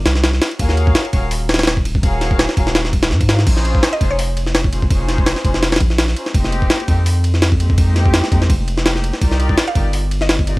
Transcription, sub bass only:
0.06 0.40 C2 medium
0.59 0.94 D#2 loud
1.13 2.47 D#1 medium
2.57 3.13 D#1 medium
3.11 3.46 G#2 loud
3.47 3.82 A#1 loud
4.01 5.35 F1 medium
5.45 5.80 F1 medium
5.80 6.15 A#1 loud
6.34 6.69 F1 loud
6.88 8.22 F2 medium
8.32 8.51 F2 medium
8.50 9.12 F1 medium
9.21 9.56 C2 loud
9.76 10.59 G1 medium

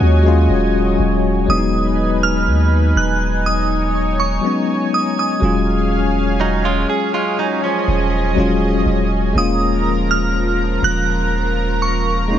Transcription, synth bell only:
0.00 0.96 F#6 medium
1.50 2.25 D#6 medium
2.23 2.99 F6 medium
2.97 3.47 F#6 medium
3.46 4.22 D#6 medium
4.20 4.95 C#6 medium
4.94 5.16 D#6 medium
5.19 6.13 D#6 medium
9.38 10.13 D#6 loud
10.11 10.86 F6 loud
10.84 11.85 F#6 loud
11.82 12.39 C#6 medium

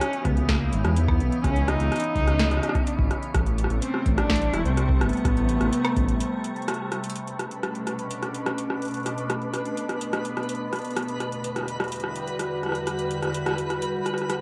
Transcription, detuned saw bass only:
0.25 0.69 C#2 medium
0.73 0.82 G#1 medium
0.85 1.22 E2 loud
1.20 1.30 B1 loud
1.44 1.76 C#2 loud
1.80 1.90 C#2 loud
2.15 2.60 C#2 medium
2.99 3.09 G#1 medium
3.35 3.67 A1 loud
3.70 3.80 A1 loud
4.06 4.50 A1 medium
4.53 4.63 E1 medium
4.65 5.03 C2 medium
5.01 5.11 G1 loud
5.25 5.57 A1 loud
5.61 5.70 A1 loud
5.96 6.20 A1 medium

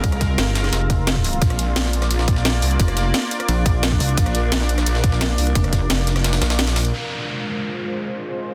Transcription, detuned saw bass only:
1.42 1.75 A#1 medium
1.76 2.09 A#1 medium
2.11 2.61 A#1 loud
2.62 2.78 C2 loud
4.00 4.16 C2 loud
4.17 4.51 A#1 loud
4.52 4.85 A#1 medium
4.86 5.37 A#1 loud
5.38 5.54 C2 loud
6.42 6.92 A#1 loud

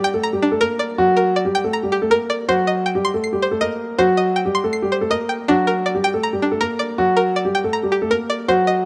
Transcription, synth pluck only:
0.00 0.41 D4 medium
0.00 0.60 A#4 medium
0.00 0.78 D5 medium
0.04 0.98 G5 loud
0.23 1.17 A#5 medium
0.43 1.36 D4 medium
0.61 1.15 A#4 loud
0.79 1.35 D5 medium
1.17 2.10 A#4 medium
1.36 2.29 D5 medium
1.55 2.48 G5 loud
1.73 2.48 A#5 medium
1.92 2.48 G4 medium
2.11 2.48 A#4 loud
2.30 2.48 D5 medium
2.49 3.41 C5 medium
2.67 3.60 D#5 medium
2.86 3.80 G5 medium
3.05 3.98 C6 loud
3.24 4.17 C7 medium
3.42 3.97 C5 medium
3.61 4.16 D#5 medium
3.98 4.91 C5 medium
4.17 5.09 D#5 medium
4.36 5.28 G5 medium
4.55 5.48 C6 medium
4.73 5.48 C7 medium
4.92 5.48 C5 medium
5.11 5.48 D#5 medium
5.29 5.48 G5 medium
5.48 6.41 D4 medium
5.67 6.59 A#4 medium
5.86 6.78 D5 medium
6.04 6.98 G5 loud
6.23 7.17 A#5 medium
6.42 7.36 D4 medium
6.61 7.15 A#4 loud
6.79 7.35 D5 medium
7.17 8.10 A#4 medium
7.36 8.28 D5 medium
7.55 8.48 G5 loud
7.73 8.48 A#5 medium
7.92 8.48 G4 medium
8.11 8.48 A#4 loud
8.30 8.48 D5 medium
8.49 8.85 C5 medium
8.67 8.85 D#5 medium

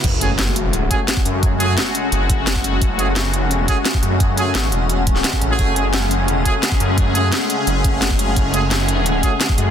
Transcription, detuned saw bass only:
0.04 0.89 F#1 loud
1.25 1.76 F#2 loud
2.12 2.80 F#1 loud
2.82 3.42 F#1 loud
3.42 3.67 F1 loud
4.03 4.54 F#2 medium
4.55 4.71 G#1 loud
4.72 5.23 E1 loud
5.42 5.58 A1 loud
5.59 6.19 F#1 loud
6.19 6.44 F1 loud
6.80 7.31 F#2 loud
7.67 8.35 F#1 loud
8.37 9.22 F#1 loud
9.58 9.71 F#2 medium

